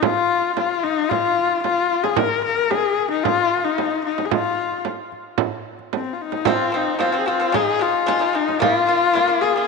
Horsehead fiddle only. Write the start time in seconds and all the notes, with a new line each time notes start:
0.03 F4
0.57 F4
0.83 D#4
1.09 F4
1.63 F4
2.03 G#4
2.18 A#4
2.44 A#4
2.70 G#4
3.11 D#4
3.24 F4
3.64 D#4
4.05 D#4
4.25 G#4
4.34 F4
5.95 C4
6.13 F4
6.22 D#4
6.49 F4
6.76 D#4
7.02 F4
7.20 G#4
7.28 F4
7.55 G#4
7.82 F4
8.36 D#4
8.62 F4
9.42 G#4